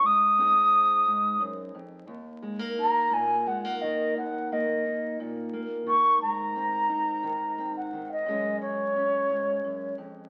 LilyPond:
<<
  \new Staff \with { instrumentName = "Flute" } { \time 6/8 \key ees \dorian \tempo 4. = 58 ees'''2 r4 | r4 bes''8 aes''8 ges''8 ees''8 | ges''8 ees''4 r4 des'''8 | bes''2~ bes''16 ges''8 ees''16~ |
ees''8 des''2 r8 | }
  \new Staff \with { instrumentName = "Steel-string acoustic guitar" } { \clef bass \time 6/8 \key ees \dorian << { r8 <c' ees' aes'>2~ <c' ees' aes'>8 | r8 aes16 bes16 ees'4 aes16 bes8. | r8 bes8 ees'4 bes4 | r8 c'8 ees'4 c'4 |
<aes des' aes'>8 aes8 des'2 | } \\ { aes,4. aes,8 ges,8 f,8 | ees,4. bes,4 ees8 | ees,4. bes,4 ees8 | aes,4. ees4 ees8 |
ges,4. aes,8 ges,8 f,8 | } >> }
>>